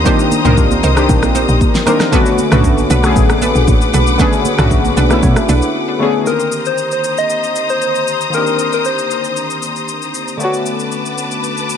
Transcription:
Already playing: D3 D#3 A#3 C4 D4 F4 G4 A#4 C5 A#5 D#6
0.04 D#3 A#3 C4 D4 D#4 G4 A#4 C5, kick, low conga, shaker
0.19 shaker
0.32 high conga, shaker
0.44 C2 D3 A#3 C4 D4 D#4 A#4 C5, mid tom, shaker
0.50 D#3
0.57 kick, shaker
0.71 high conga, shaker
0.83 C2 D#4 A#4 C5, high conga, shaker
0.95 D#3 A#3 C4 D4 G4, cross-stick, shaker
1.09 A#1, kick, low conga, shaker
1.23 cross-stick, high conga, shaker
1.35 D#4 A#4 C5, high conga, shaker
1.49 A#1, shaker
1.61 kick, high conga, shaker
1.75 snare, shaker
1.86 D#3 A#3 C4 D4 D#4 A#4 C5, cross-stick, high conga, low conga, shaker
2.00 cross-stick, snare, shaker
2.11 D3 A3 B3 C#4 D4 F#4 A4 B4 F#5 D6, kick, low conga, shaker
2.26 shaker
2.38 high conga, shaker
2.50 B1 D3 A3 B3 C#4 D4 F#4 A4 B4, cross-stick, mid tom, shaker
2.64 kick, shaker
2.77 high conga, shaker
2.90 B1 D4 A4 B4, high conga, shaker
3.03 D3 A3 B3 C#4 G#4, cross-stick, shaker
3.16 A1, kick, low conga, shaker
3.30 cross-stick, high conga, shaker
3.42 D4 A4 B4, high conga, shaker
3.55 A#1, shaker
3.68 A1, kick, high conga, shaker
3.81 shaker
3.93 B1 D4 A4 B4, high conga, low conga, shaker
4.07 shaker
4.18 D3 A3 B3 C#4 D4 G#4 A4 B4, kick, low conga, shaker
4.33 shaker
4.45 high conga, shaker
4.57 B1 D3 A3 B3 C#4 D4 F#4 A4 B4, cross-stick, mid tom, shaker
4.71 kick, shaker
4.85 high conga, shaker
4.97 B1 D4 A4 B4, high conga, shaker
5.09 D3 A3 B3 C#4 E4, cross-stick, shaker
5.22 B2, kick, low conga, shaker
5.36 cross-stick, high conga, shaker
5.49 B1 D4 A4 B4, high conga, shaker
5.62 shaker
5.99 D3 A3 B3 C#4 G#4
6.23 D#3 A#3 C4 A#4 C5 A#5 D#6, shaker
6.29 D3 G4
6.40 shaker
6.52 shaker
6.65 C5, shaker
6.78 shaker
6.92 C5, shaker
7.04 shaker
7.17 D#5, shaker
7.30 D#5, shaker
7.44 shaker
7.56 shaker
7.69 C5, shaker
7.82 shaker
7.95 shaker
8.08 shaker
8.21 shaker
8.30 D#3 A#3 C4, shaker
8.34 D4 G4 A#4
8.47 shaker
8.59 shaker
8.73 A#4, shaker
8.85 C5, shaker
8.98 shaker
9.11 shaker
9.24 shaker
9.37 shaker
9.50 shaker
9.63 shaker
9.76 shaker
9.89 shaker
10.02 shaker
10.14 shaker
10.28 shaker
10.37 D3 A3 B3 B4 A5 D6, shaker
10.43 C#4 F#4
10.54 shaker
10.66 shaker
10.79 shaker
10.92 shaker
11.06 shaker
11.18 shaker
11.31 shaker
11.44 shaker
11.57 shaker
11.70 shaker

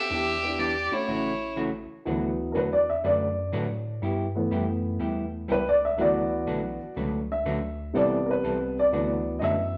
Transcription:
Already playing: G4 E5
0.10 E2 E3 B3 D4 G4
0.43 B3 D4 E4 G4
0.59 E3 B3 D4 G4 D5
0.91 A3 C#4 E4 F#4 C#5
1.07 A1 C#3 E3 A3 C#4 F#4
1.56 C#3 E3 A3 C#4 F#4
2.05 D2 D3 E3 F#3 A3 B3 D4 F#4 B4
2.52 E2 D3 F#3 A3 D4 F#4 A#4 B4
2.57 B4
2.73 D5
2.90 E5
3.04 F#2 D3 F#3 A3 D4 F#4 B4 D5
3.52 A2 D3 F#3 A3 D4 F#4 B4
4.02 G2 G3 B3 E4 G4
4.35 E3 A3 B3
4.51 F#2 G3 B3 E4 G4
4.99 E2 G3 B3 E4 G4
5.48 C#2 G3 B3 E4 G4 B4
5.69 D5
5.85 E5
5.97 D2 D3 E3 F#3 A3 B3 D4 F#4 B4
6.01 D5
6.46 B1 D3 F#3 A3 D4 F#4 B4
6.81 B1
6.96 C#2 D3 F#3 A3 D4 F#4 B4
7.32 E5
7.45 D2 D3 F#3 A3 D4 F#4 B4
7.93 A1 C3 E3 G3 B3 C4 E4 A4 D5
8.26 A#4
8.31 B4
8.44 C2 E3 G3 C4 E4 A4
8.79 D5
8.92 D2 D3 E3 F#3 A3 B3 D4 F#4 B4
9.39 F#2 D3 F#3 A3 D4 F#4 B4 D#5
9.44 E5

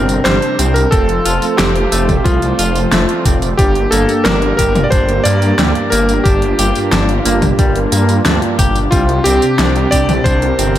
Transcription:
Already playing: G1 C3 G3 C4 D4 G4 A#4
0.09 closed hi-hat, tambourine
0.24 G1 C3 G3 C4 D4 G4 C5, snare, closed hi-hat, tambourine
0.42 closed hi-hat
0.59 C2 C4, closed hi-hat, tambourine
0.74 A#4, closed hi-hat, tambourine
0.91 F1 F3 A3 C4 F4 A4 C5, kick, closed hi-hat, tambourine
1.09 closed hi-hat
1.25 F1 F4, closed hi-hat, tambourine
1.42 A3 C4 F4 A4, closed hi-hat, tambourine
1.57 F1 C4 G4, snare, closed hi-hat, tambourine
1.76 closed hi-hat
1.92 F1 A3 C4 F4 A4, closed hi-hat, tambourine
2.09 kick, closed hi-hat, mid tom, tambourine
2.17 G4
2.24 C2 F3 F4, kick, closed hi-hat, tambourine
2.42 A3 C4 F4 D5, closed hi-hat, tambourine
2.59 F1 F4, closed hi-hat, tambourine
2.75 A3 C4 F4 C5, closed hi-hat, tambourine
2.92 F1 A3, snare, closed hi-hat, tambourine
3.09 A3 C4 F4 D5, closed hi-hat
3.26 F1 C4, kick, closed hi-hat, mid tom, tambourine
3.42 closed hi-hat, tambourine
3.57 G1 G2 G3 A#3 D4 G4, kick, closed hi-hat, tambourine
3.75 closed hi-hat
3.91 G1 A#3 A4, closed hi-hat, tambourine
4.09 G2 G3 A#3 D4 G4, closed hi-hat, tambourine
4.24 G1 D4 A#4, snare, closed hi-hat, tambourine
4.42 closed hi-hat
4.57 G1 G2 G3 A#3 D4 G4 A#4, kick, closed hi-hat, tambourine
4.75 closed hi-hat, mid tom, tambourine
4.84 D5
4.91 G1 D4 C5, kick, closed hi-hat, tambourine
5.09 G2 G3 A#3 D4 A#4, closed hi-hat
5.24 G2 A#3 D5, closed hi-hat, tambourine
5.42 closed hi-hat, tambourine
5.59 D2 G2 G3 A#3 D4 G4, snare, closed hi-hat, tambourine
5.75 closed hi-hat
5.90 G1 A#3 A#4, closed hi-hat, tambourine
6.09 closed hi-hat, tambourine
6.24 G1 G2 G3 A#3 D4 F4 G4, kick, closed hi-hat, tambourine
6.42 closed hi-hat
6.59 G1 G4, closed hi-hat, tambourine
6.75 G2 G3 A#3 D4 G4, closed hi-hat, tambourine
6.92 G1 D4, snare, closed hi-hat, tambourine
7.09 closed hi-hat
7.25 G1 G2 G3 A#3 D4 G4, closed hi-hat, tambourine
7.42 kick, closed hi-hat, mid tom, tambourine
7.59 G1 G3, kick, closed hi-hat, tambourine
7.76 G2 G3 A#3 D4 A#4, closed hi-hat
7.92 G2 A#3, closed hi-hat, tambourine
8.09 closed hi-hat, tambourine
8.25 D2 G2 G3 A#3 D4 G4, snare, closed hi-hat, tambourine
8.42 closed hi-hat
8.59 G1 G4, kick, closed hi-hat, mid tom, tambourine
8.76 closed hi-hat, tambourine
8.91 C2 C3 G3 C4 D4 F4 G4, kick, closed hi-hat, tambourine
9.09 closed hi-hat
9.24 C2 C4 G4, closed hi-hat, tambourine
9.42 C3 G3 C4 D4 G4, closed hi-hat, tambourine
9.59 C2 D4, snare, closed hi-hat, tambourine
9.76 closed hi-hat
9.91 C2 C3 G3 C4 D4 G4 D5, kick, closed hi-hat, tambourine
10.09 closed hi-hat, mid tom, tambourine
10.24 C2 D4 C5, kick, closed hi-hat, tambourine
10.42 C3 G3 C4 D4 A#4, closed hi-hat
10.59 G1 C4, closed hi-hat, tambourine

